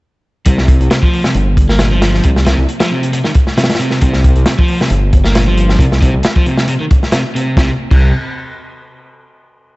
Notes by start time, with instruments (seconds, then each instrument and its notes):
0.46 detuned saw bass C2, overdriven electric guitar C3, kick, closed hi-hat
0.58 snare
0.68 kick, closed hi-hat
0.81 detuned saw bass C2, closed hi-hat
0.91 overdriven electric guitar C3, snare, closed hi-hat
1.03 overdriven electric guitar F3, kick
1.13 open hi-hat
1.24 overdriven electric guitar C3, snare
1.34 detuned saw bass G1, closed hi-hat
1.57 kick, closed hi-hat
1.69 overdriven electric guitar A#3, snare
1.79 overdriven electric guitar A#2, snare, closed hi-hat
1.91 overdriven electric guitar F3
2.02 snare, closed hi-hat
2.14 snare
2.24 detuned saw bass C2, overdriven electric guitar C3, kick, closed hi-hat
2.36 snare
2.46 overdriven electric guitar C3, snare, closed hi-hat
2.58 detuned saw bass C2
2.69 closed hi-hat
2.80 overdriven electric guitar F3, snare, closed hi-hat
2.91 overdriven electric guitar C3
3.03 closed hi-hat
3.13 overdriven electric guitar C3, closed hi-hat
3.24 overdriven electric guitar D#3, snare
3.34 kick, closed hi-hat
3.47 snare
3.57 overdriven electric guitar C3, snare, closed hi-hat
3.64 snare, closed hi-hat
3.70 snare, closed hi-hat
3.74 snare, closed hi-hat
3.80 overdriven electric guitar C3, closed hi-hat
3.91 snare
4.01 detuned saw bass C2, overdriven electric guitar C3, kick, closed hi-hat
4.13 snare
4.24 kick, closed hi-hat
4.36 detuned saw bass C2, closed hi-hat
4.46 overdriven electric guitar C3, snare, closed hi-hat
4.58 overdriven electric guitar F3, kick
4.68 open hi-hat
4.81 overdriven electric guitar C3, snare
4.90 detuned saw bass G1, closed hi-hat
5.13 kick, closed hi-hat
5.24 overdriven electric guitar A#3, snare
5.35 overdriven electric guitar A#2, snare, closed hi-hat
5.47 overdriven electric guitar F3
5.57 closed hi-hat
5.69 snare
5.79 detuned saw bass C2, overdriven electric guitar C3, kick, closed hi-hat
5.92 snare
6.02 overdriven electric guitar C3, kick, closed hi-hat
6.14 detuned saw bass C2
6.23 snare, closed hi-hat
6.36 overdriven electric guitar F3, kick
6.46 overdriven electric guitar C3, closed hi-hat
6.58 snare
6.68 overdriven electric guitar C3, closed hi-hat
6.80 overdriven electric guitar D#3
6.91 kick, closed hi-hat
7.03 snare
7.12 overdriven electric guitar C3, snare, closed hi-hat
7.35 overdriven electric guitar C3, closed hi-hat
7.57 detuned saw bass C2, overdriven electric guitar C3, kick, snare
7.91 detuned saw bass C2, overdriven electric guitar C3, kick, crash